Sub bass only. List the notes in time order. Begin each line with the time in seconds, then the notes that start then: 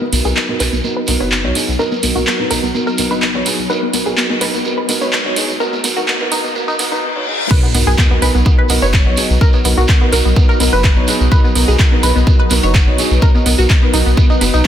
0.12 B1
0.25 B1
0.60 B1
0.73 B1
1.08 B1
1.20 F#1
1.44 B1
1.68 B1
2.03 B1
2.16 B1
2.51 B1
2.63 B1
2.98 B1
3.11 F#1
3.35 B1
3.58 B1
3.94 B1
4.06 B1
4.41 B1
4.54 B1
4.89 B1
5.01 F#1
5.25 B1
5.49 B1
5.84 B1
5.97 B1
6.32 B1
6.44 B1
6.79 F#1
6.92 B1
7.75 B1
7.87 B1
8.22 B1
8.35 B1
8.70 B1
8.82 F#1
9.06 B1
9.30 B1
9.65 B1
9.78 B1
10.13 B1
10.25 B1
10.60 B1
10.73 F#1
10.97 B1
11.21 B1
11.56 B1
11.68 B1
12.03 B1
12.16 B1
12.51 B1
12.63 F#1
12.87 B1
13.11 B1
13.46 B1
13.59 B1
13.94 B1
14.06 B1
14.41 F#1
14.54 B1